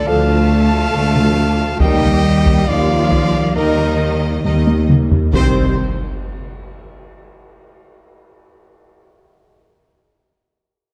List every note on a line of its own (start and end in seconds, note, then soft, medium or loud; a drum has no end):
0.06 0.83 D2 loud
0.06 0.84 D2 loud
0.06 0.27 D3 loud
0.06 0.39 F3 loud
0.06 1.81 A3 loud
0.06 0.27 D4 loud
0.06 1.80 A4 loud
0.06 0.40 A4 loud
0.06 1.80 F5 loud
0.06 1.81 A5 loud
0.06 1.82 A5 loud
0.30 0.51 F3 medium
0.30 0.51 F4 medium
0.50 0.72 D3 medium
0.50 0.72 D4 medium
0.73 0.94 F3 medium
0.73 0.94 F4 medium
0.93 1.70 D2 loud
0.93 1.14 D3 medium
0.93 1.14 D4 medium
1.15 1.37 F3 medium
1.15 1.37 F4 medium
1.15 taiko mid medium
1.37 1.59 D3 medium
1.37 1.59 D4 medium
1.59 1.81 F3 medium
1.59 1.81 F4 medium
1.80 2.58 D#2 loud
1.80 2.13 D#3 loud
1.80 2.01 G3 loud
1.80 2.67 G3 loud
1.80 2.01 A#3 medium
1.80 2.66 G4 loud
1.80 2.14 A#4 loud
1.80 2.70 D#5 loud
1.80 2.66 G5 loud
1.80 2.67 G5 loud
1.80 taiko loud
2.01 2.24 D#3 medium
2.01 2.24 G3 medium
2.01 taiko mid medium
2.25 2.46 G3 medium
2.25 2.47 A#3 medium
2.45 2.68 D#3 medium
2.45 2.68 G3 medium
2.45 taiko loud
2.67 3.45 D#2 loud
2.67 3.46 D#2 loud
2.67 3.57 F3 loud
2.67 2.89 G3 loud
2.67 2.89 A#3 loud
2.67 3.54 F4 loud
2.67 3.56 D5 loud
2.67 3.56 F5 loud
2.67 3.58 F5 loud
2.92 3.13 D#3 medium
2.92 3.12 G3 loud
3.12 3.33 G3 medium
3.12 3.35 A#3 medium
3.12 taiko medium
3.34 3.57 D#3 medium
3.34 3.55 G3 medium
3.34 taiko rim soft
3.55 4.34 D#2 loud
3.55 4.35 D#2 loud
3.55 3.89 D#3 loud
3.55 4.45 D#3 loud
3.55 3.77 G3 medium
3.55 3.77 A#3 loud
3.55 4.43 D#4 loud
3.55 3.89 A#4 loud
3.55 4.15 A#4 loud
3.55 4.16 D#5 loud
3.55 4.43 D#5 loud
3.79 4.01 D#3 medium
3.79 4.00 G3 medium
4.01 4.22 G3 medium
4.01 4.23 A#3 medium
4.24 4.46 D#3 medium
4.24 4.45 G3 medium
4.44 5.24 D#2 loud
4.44 4.89 D#3 medium
4.44 4.66 G3 medium
4.44 4.66 A#3 medium
4.44 4.88 D#4 medium
4.44 4.87 A#4 medium
4.44 4.86 D#5 medium
4.44 4.89 D#5 loud
4.44 taiko high loud
4.67 4.90 D#3 medium
4.67 4.89 G3 medium
4.67 taiko high loud
4.89 5.12 G3 medium
4.89 5.13 A#3 medium
4.89 taiko mid loud
5.11 5.34 D#3 medium
5.11 5.35 G3 medium
5.11 taiko low loud
5.33 5.76 C2 medium
5.33 5.85 C2 loud
5.33 5.76 D#3 medium
5.33 5.85 D#3 loud
5.33 5.85 C4 loud
5.33 5.76 G4 medium
5.33 5.84 C5 loud
5.33 5.77 C5 loud
5.33 taiko loud
5.33 impact medium